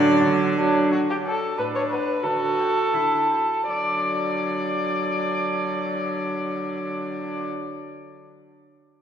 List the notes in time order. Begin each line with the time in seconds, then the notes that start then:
Already playing: D3 F#3 D4 D5
0.25 D3
0.59 F#3 D4
0.92 D3 F#4
1.10 G4
1.26 A4 F#5
1.59 A2 D4 B4
1.75 C#5
1.89 B4 F#5
2.24 D3 F#4 A4
2.60 G5
2.94 D3 E4
3.31 G5
3.69 D3 F#3 D4 D5